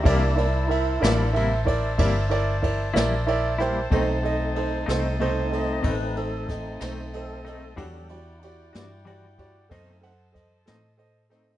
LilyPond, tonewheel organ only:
\new Staff \with { instrumentName = "Tonewheel organ" } { \time 12/8 \key b \phrygian \tempo 4. = 62 << { g'8 e'8 <dis' e'>2. r2 | r2 r8 dis''8 b'8 a'8 <d' dis'>4 a'4~ | a'8 e'8 <dis' e'>2 r2. | } \\ { <bes d' e'>8 r4 <bes d' e'>8 r1 | <a c' dis'>1. | <fis g d'>8 r2 r8 <a c' dis'>8 r2 <a c' dis'>8 | } >> }